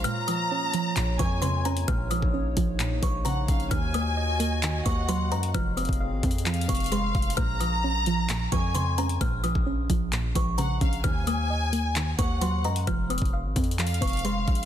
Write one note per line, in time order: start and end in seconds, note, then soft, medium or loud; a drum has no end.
0.00 1.84 F4 medium
0.04 0.95 A#2 medium
0.04 5.50 A#3 medium
0.04 3.68 C#5 medium
0.04 1.15 A#5 loud
0.04 0.26 F6 loud
0.04 closed hi-hat medium
0.28 0.73 F3 medium
0.28 1.15 D#6 medium
0.28 closed hi-hat medium
0.51 1.64 C#4 medium
0.74 1.18 F3 loud
0.74 closed hi-hat medium
0.96 1.18 A#1 loud
0.96 1.87 A#2 medium
0.96 clap loud
0.96 closed hi-hat medium
1.19 1.85 F2 loud
1.19 2.10 F3 medium
1.19 1.84 G#5 medium
1.19 1.41 C#6 medium
1.19 kick medium
1.19 closed hi-hat medium
1.42 2.57 C#3 medium
1.42 1.63 C6 medium
1.42 closed hi-hat medium
1.65 2.32 C#4 medium
1.65 1.87 A#5 medium
1.65 closed hi-hat soft
1.77 closed hi-hat medium
1.88 2.21 A#1 loud
1.88 2.78 A#2 loud
1.88 3.69 D#4 medium
1.88 2.10 F6 loud
1.88 kick loud
1.88 closed hi-hat medium
2.11 2.56 F3 medium
2.11 2.98 D#6 medium
2.11 closed hi-hat medium
2.22 2.55 A#1 loud
2.22 kick loud
2.34 3.47 C#4 medium
2.57 3.01 A#1 loud
2.57 3.01 F3 loud
2.57 kick loud
2.57 closed hi-hat medium
2.79 3.71 A#2 medium
2.79 clap loud
2.79 closed hi-hat medium
3.02 3.47 A#1 loud
3.02 3.71 F3 medium
3.02 3.24 C#6 medium
3.02 kick loud
3.02 closed hi-hat medium
3.25 3.71 C#3 loud
3.25 3.47 F#5 medium
3.25 3.68 A#5 medium
3.25 closed hi-hat medium
3.48 3.70 A#1 loud
3.48 3.71 C#4 medium
3.48 3.70 F5 medium
3.48 kick loud
3.48 closed hi-hat medium
3.60 closed hi-hat soft
3.71 4.82 D#2 loud
3.71 4.62 D#3 medium
3.71 5.53 F#4 medium
3.71 5.53 D#5 medium
3.71 4.82 G#5 loud
3.71 3.93 F6 medium
3.71 kick loud
3.71 closed hi-hat medium
3.94 4.38 A#3 medium
3.94 4.82 D#6 medium
3.94 closed hi-hat medium
4.17 5.30 D#5 medium
4.40 4.85 A#3 loud
4.40 closed hi-hat medium
4.63 5.55 D#3 medium
4.63 clap loud
4.63 closed hi-hat medium
4.86 5.33 D#2 loud
4.86 5.54 A#3 medium
4.86 5.50 F#5 medium
4.86 5.07 C#6 medium
4.86 kick medium
4.86 closed hi-hat medium
5.08 5.54 F#3 medium
5.08 5.30 C6 medium
5.08 closed hi-hat medium
5.32 5.53 F#2 loud
5.32 5.55 D#5 medium
5.32 5.53 A#5 medium
5.32 closed hi-hat soft
5.43 closed hi-hat medium
5.54 5.87 F1 loud
5.54 6.45 F3 medium
5.54 7.36 C4 medium
5.54 7.36 G#4 medium
5.54 7.36 F5 medium
5.54 5.76 F6 loud
5.54 kick loud
5.54 closed hi-hat medium
5.77 6.23 C4 medium
5.77 6.65 D#6 medium
5.77 closed hi-hat medium
5.85 6.13 F1 loud
5.85 kick loud
5.85 closed hi-hat medium
5.93 closed hi-hat medium
6.00 7.14 F5 medium
6.12 6.23 G#1 loud
6.23 6.67 F2 loud
6.23 6.67 C4 loud
6.23 kick loud
6.23 closed hi-hat medium
6.31 closed hi-hat medium
6.38 closed hi-hat soft
6.46 7.38 F3 medium
6.46 7.34 F5 loud
6.46 clap loud
6.46 closed hi-hat medium
6.54 closed hi-hat medium
6.61 closed hi-hat medium
6.68 7.13 F1 loud
6.68 7.37 C4 medium
6.68 6.90 C#6 medium
6.68 kick medium
6.68 closed hi-hat medium
6.75 closed hi-hat medium
6.77 closed hi-hat soft
6.80 closed hi-hat medium
6.84 closed hi-hat soft
6.86 closed hi-hat medium
6.92 7.38 G#3 loud
6.92 7.35 C6 medium
6.92 closed hi-hat medium
7.15 7.37 F1 loud
7.15 7.38 F5 medium
7.15 kick loud
7.15 closed hi-hat soft
7.22 closed hi-hat medium
7.30 closed hi-hat medium
7.37 8.48 A#1 loud
7.37 8.28 A#2 medium
7.37 8.48 A#5 loud
7.37 7.59 F6 loud
7.37 kick loud
7.37 closed hi-hat medium
7.60 8.06 F3 medium
7.60 8.48 D#6 medium
7.60 closed hi-hat medium
7.84 8.97 C#4 medium
8.06 8.51 F3 loud
8.06 closed hi-hat medium
8.29 9.20 A#2 medium
8.29 clap loud
8.29 closed hi-hat medium
8.52 9.18 F2 loud
8.52 9.43 F3 medium
8.52 9.17 G#5 medium
8.52 8.74 C#6 medium
8.52 kick medium
8.52 closed hi-hat medium
8.75 9.90 C#3 medium
8.75 8.96 C6 medium
8.75 closed hi-hat medium
8.98 9.65 C#4 medium
8.98 9.20 A#5 medium
8.98 closed hi-hat soft
9.09 closed hi-hat medium
9.21 9.54 A#1 loud
9.21 10.11 A#2 loud
9.21 9.42 F6 loud
9.21 kick loud
9.21 closed hi-hat medium
9.44 9.89 F3 medium
9.44 10.31 D#6 medium
9.44 closed hi-hat medium
9.55 9.88 A#1 loud
9.55 kick loud
9.66 10.80 C#4 medium
9.90 10.34 A#1 loud
9.90 10.34 F3 loud
9.90 kick loud
9.90 closed hi-hat medium
10.12 11.04 A#2 medium
10.12 clap loud
10.12 closed hi-hat medium
10.35 10.79 A#1 loud
10.35 11.04 F3 medium
10.35 10.57 C#6 medium
10.35 kick medium
10.35 closed hi-hat medium
10.58 11.04 C#3 loud
10.58 10.80 F#5 medium
10.58 11.01 A#5 medium
10.58 closed hi-hat medium
10.81 11.03 A#1 loud
10.81 11.04 C#4 medium
10.81 11.03 F5 medium
10.81 kick loud
10.81 closed hi-hat medium
10.93 closed hi-hat soft
11.04 12.15 D#2 loud
11.04 11.95 D#3 medium
11.04 12.15 G#5 loud
11.04 11.25 F6 loud
11.04 kick loud
11.04 closed hi-hat medium
11.27 11.71 A#3 medium
11.27 12.15 D#6 medium
11.27 closed hi-hat medium
11.50 12.63 D#5 medium
11.72 12.17 A#3 loud
11.72 closed hi-hat medium
11.96 12.87 D#3 medium
11.96 clap loud
11.96 closed hi-hat medium
12.19 12.66 D#2 loud
12.19 12.87 A#3 medium
12.19 12.83 F#5 medium
12.19 12.40 C#6 medium
12.19 kick loud
12.19 closed hi-hat medium
12.41 12.87 F#3 medium
12.41 12.63 C6 medium
12.41 closed hi-hat medium
12.64 12.86 F#2 loud
12.64 12.87 D#5 medium
12.64 12.86 A#5 medium
12.64 closed hi-hat soft
12.76 closed hi-hat medium
12.87 13.20 F1 loud
12.87 13.77 F3 loud
12.87 13.09 F6 loud
12.87 kick loud
12.87 closed hi-hat medium
13.09 13.56 C4 medium
13.09 13.98 D#6 medium
13.09 closed hi-hat medium
13.18 13.46 F1 loud
13.18 kick loud
13.18 closed hi-hat medium
13.25 closed hi-hat medium
13.33 14.47 F5 medium
13.45 13.55 G#1 loud
13.56 14.00 F2 loud
13.56 14.00 C4 loud
13.56 kick medium
13.56 closed hi-hat medium
13.64 closed hi-hat medium
13.71 closed hi-hat soft
13.79 14.65 F3 medium
13.79 14.65 F5 loud
13.79 clap loud
13.79 closed hi-hat medium
13.87 closed hi-hat medium
13.94 closed hi-hat medium
14.01 14.46 F1 loud
14.01 14.65 C4 medium
14.01 14.23 C#6 medium
14.01 kick medium
14.01 closed hi-hat medium
14.08 closed hi-hat medium
14.09 closed hi-hat soft
14.13 closed hi-hat medium
14.17 closed hi-hat soft
14.19 closed hi-hat soft
14.24 14.65 G#3 loud
14.24 14.65 C6 medium
14.24 closed hi-hat medium
14.48 14.65 A#1 loud
14.48 14.65 F5 medium
14.48 kick loud
14.48 closed hi-hat soft
14.55 closed hi-hat medium